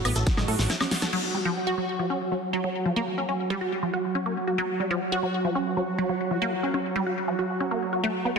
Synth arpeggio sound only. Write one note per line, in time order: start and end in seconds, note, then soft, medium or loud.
0.05 0.09 B3 loud
0.16 0.22 A4 medium
0.37 0.44 G#3 medium
0.48 0.51 A4 medium
0.70 0.72 E4 medium
0.81 0.87 C#4 medium
1.02 1.09 A4 medium
1.13 1.16 F#3 loud
1.34 1.37 G3 medium
1.45 1.50 F3 loud
1.67 1.73 F#4 loud
1.78 1.80 F#3 medium
1.99 2.06 F3 medium
2.10 2.14 C#4 medium
2.32 2.36 F#3 medium
2.53 2.58 F#3 loud
2.64 2.67 F#3 medium
2.86 2.92 F3 medium
2.96 2.99 A#3 loud
3.18 3.22 C#4 medium
3.29 3.31 C#4 medium
3.50 3.55 G3 loud
3.61 3.68 F#4 medium
3.83 3.89 F3 medium
3.94 3.96 F#4 medium
4.15 4.18 C#4 medium
4.26 4.32 A#3 medium
4.47 4.54 F#4 medium
4.58 4.61 F#3 loud
4.80 4.82 G3 medium
4.91 4.95 F3 loud
5.12 5.19 F#4 loud
5.23 5.26 F#3 medium
5.45 5.51 F3 medium
5.55 5.60 C#4 medium
5.77 5.81 F#3 medium
5.98 6.03 F#3 loud
6.09 6.12 F#3 medium
6.31 6.37 F3 medium
6.42 6.44 A#3 loud
6.63 6.68 C#4 medium
6.74 6.77 C#4 medium
6.96 7.00 G3 loud
7.06 7.13 F#4 medium
7.28 7.35 F3 medium
7.39 7.41 F#4 medium
7.60 7.63 C#4 medium
7.71 7.78 A#3 medium
7.93 7.99 F#4 medium
8.04 8.06 A3 loud
8.25 8.28 B3 medium